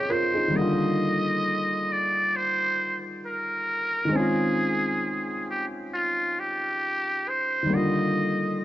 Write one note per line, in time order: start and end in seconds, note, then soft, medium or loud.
0.00 0.13 G4 loud
0.00 0.34 G#4 medium
0.00 0.10 A#4 soft
0.00 0.55 C#5 medium
0.00 0.55 D#5 soft
0.10 0.34 F4 medium
0.10 0.33 A#4 medium
0.10 0.58 C5 loud
0.34 0.77 D#4 medium
0.34 0.77 G#4 medium
0.48 4.03 D#3 medium
0.48 4.06 G3 medium
0.54 4.10 D3 medium
0.54 4.08 A#3 medium
0.54 1.93 D#5 loud
0.61 4.12 F4 medium
1.92 2.37 D5 loud
2.36 2.99 C5 loud
3.26 4.17 A#4 medium
4.05 7.61 D#3 medium
4.05 7.64 G#3 medium
4.12 7.66 C4 medium
4.12 7.68 C#4 medium
4.12 5.48 G#4 medium
4.19 7.70 F4 medium
5.50 5.66 G4 medium
5.94 6.41 F4 medium
6.39 7.30 G4 loud
7.29 7.75 C5 medium
7.63 8.64 D#3 medium
7.63 8.64 G3 medium
7.70 8.64 D3 medium
7.70 8.64 A#3 medium
7.74 8.64 F4 medium
7.74 8.64 D#5 medium